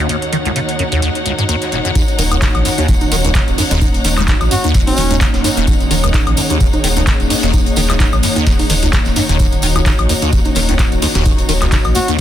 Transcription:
Already playing: D#2 D#3 D#4 F#4 C#5 F#5
0.09 D#2, closed hi-hat, tambourine
0.22 closed hi-hat
0.32 D#3, closed hi-hat, tambourine
0.45 C#2, snare, closed hi-hat
0.56 C#3, closed hi-hat, tambourine
0.69 closed hi-hat
0.79 F#2, closed hi-hat, tambourine
0.92 D#2, closed hi-hat
1.02 D#2, closed hi-hat, tambourine
1.15 closed hi-hat
1.25 C#2, closed hi-hat, tambourine
1.38 G#2, closed hi-hat
1.49 D#2, closed hi-hat, tambourine
1.62 snare, closed hi-hat
1.71 D#1, snare, closed hi-hat, tambourine
1.85 F#2, snare, closed hi-hat
1.95 D#2 D#3 A#3 C#4 F#4, kick, closed hi-hat, tambourine, high conga
2.08 closed hi-hat, tambourine
2.18 D#1 D#3, open hi-hat, tambourine, high conga
2.31 C#2, closed hi-hat, tambourine, high woodblock
2.41 C#3, kick, snare, clap, closed hi-hat, tambourine, high conga
2.55 A#1, closed hi-hat, high woodblock
2.65 F#2, open hi-hat, tambourine
2.78 D#2, closed hi-hat, tambourine, high conga
2.88 D#1 D#2, kick, closed hi-hat, tambourine
3.01 closed hi-hat, tambourine, high conga
3.12 D#1 D#3, snare, open hi-hat, tambourine
3.24 C#2, closed hi-hat, tambourine, high conga
3.34 C#3, kick, snare, clap, closed hi-hat, tambourine
3.48 D#1, closed hi-hat, tambourine
3.58 F#2, open hi-hat, tambourine, high conga
3.71 D#1 D#2, snare, closed hi-hat, tambourine
3.81 kick, closed hi-hat, tambourine, high conga
3.94 closed hi-hat, tambourine
4.04 D#1 D#3, open hi-hat, tambourine, high conga
4.18 C#2, snare, clap, closed hi-hat, tambourine, high woodblock
4.28 C#3, kick, snare, clap, closed hi-hat, tambourine, high conga
4.41 A#1, closed hi-hat, tambourine, high woodblock
4.51 F#2 F#4, open hi-hat, tambourine
4.64 D#2, closed hi-hat, tambourine, high conga
4.74 D#1, kick, snare, closed hi-hat, tambourine
4.87 C#4, open hi-hat, tambourine, high conga
4.96 D#1 D#3, open hi-hat, tambourine
5.10 C#2, closed hi-hat, tambourine, high conga
5.21 C#3, kick, snare, clap, closed hi-hat, tambourine
5.34 D#1, snare, closed hi-hat, tambourine
5.44 F#2, snare, open hi-hat, tambourine, high conga
5.57 D#1 D#2, snare, closed hi-hat, tambourine
5.67 D#2 G#4, kick, closed hi-hat, tambourine, high conga
5.80 closed hi-hat, tambourine
5.91 D#1 D#3, open hi-hat, tambourine, high conga
6.04 C#2, closed hi-hat, tambourine, high woodblock
6.14 C#3, kick, snare, clap, closed hi-hat, tambourine, high conga
6.27 A#1, closed hi-hat, high woodblock
6.37 F#2, open hi-hat, tambourine
6.49 D#2, closed hi-hat, tambourine, high conga
6.60 D#1, kick, closed hi-hat, tambourine
6.73 closed hi-hat, tambourine, high conga
6.84 D#1 D#3, snare, open hi-hat, tambourine
6.97 C#2, closed hi-hat, tambourine, high conga
7.07 C#3, kick, snare, clap, closed hi-hat, tambourine
7.20 D#1, closed hi-hat, tambourine
7.30 F#2, open hi-hat, tambourine, high conga
7.43 D#1 D#2, snare, closed hi-hat, tambourine
7.53 D#2, kick, closed hi-hat, tambourine, high conga
7.66 closed hi-hat, tambourine
7.76 D#1 D#3, open hi-hat, tambourine, high conga
7.89 C#2, snare, clap, closed hi-hat, high woodblock
8.00 C#3, kick, snare, clap, closed hi-hat, tambourine, high conga
8.12 A#1, closed hi-hat, tambourine, high woodblock
8.23 F#2, open hi-hat, tambourine
8.36 D#2, closed hi-hat, tambourine, high conga
8.47 D#1, kick, snare, closed hi-hat, tambourine
8.59 open hi-hat, tambourine, high conga
8.69 D#1 D#3, open hi-hat, tambourine
8.83 C#2, closed hi-hat, tambourine, high conga
8.93 C#3, kick, snare, clap, closed hi-hat, tambourine
9.05 D#1, snare, closed hi-hat, tambourine
9.16 F#2, snare, open hi-hat, tambourine, high conga
9.29 D#1 D#2, snare, closed hi-hat, tambourine
9.39 D#2 F#4, kick, closed hi-hat, tambourine, high conga
9.52 closed hi-hat, tambourine
9.62 D#1 D#3, open hi-hat, tambourine, high conga
9.76 C#2, closed hi-hat, tambourine, high woodblock
9.86 C#3, kick, snare, clap, closed hi-hat, tambourine, high conga
9.98 A#1, closed hi-hat, high woodblock
10.09 D#2, open hi-hat, tambourine
10.22 D#2, closed hi-hat, tambourine, high conga
10.33 D#1 D#2, kick, closed hi-hat, tambourine
10.45 closed hi-hat, tambourine, high conga
10.55 D#1 D#3, snare, open hi-hat, tambourine
10.69 C#2, closed hi-hat, tambourine, high conga
10.79 C#3, kick, snare, clap, closed hi-hat, tambourine
10.92 D#1, closed hi-hat, tambourine
11.02 D#2, open hi-hat, tambourine, high conga
11.15 D#1 D#2, snare, closed hi-hat, tambourine
11.25 kick, closed hi-hat, tambourine, high conga
11.38 closed hi-hat, tambourine
11.49 D#1 D#3, open hi-hat, tambourine, high conga
11.61 C#2, snare, clap, closed hi-hat, tambourine, high woodblock
11.71 C#3, kick, snare, clap, closed hi-hat, tambourine, high conga
11.84 A#1, closed hi-hat, tambourine, high woodblock
11.95 D#2 F#4, open hi-hat, tambourine
12.08 D#2, closed hi-hat, tambourine, high conga

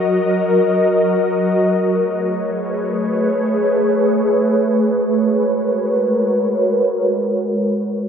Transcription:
Already playing: F#3 F#4 A#4 D#5
1.65 A3 G#4 B4 C#5
4.89 G#3 F#4 A#4 B4 C#5

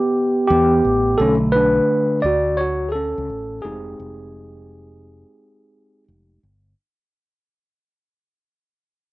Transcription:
Already playing: B3 G4
0.47 E2 B3 G4
0.85 A1
1.18 B1 D3 A3 C#4 A4
1.52 D4 B4
2.22 D2 F#4 D5
2.57 F#4 C#5
2.89 G#4 A4
2.95 C#4
3.18 C#2
3.29 A1
3.62 F1 G#3 C4 D#4 G4 G#4
4.00 F1
6.08 F1
6.43 G1

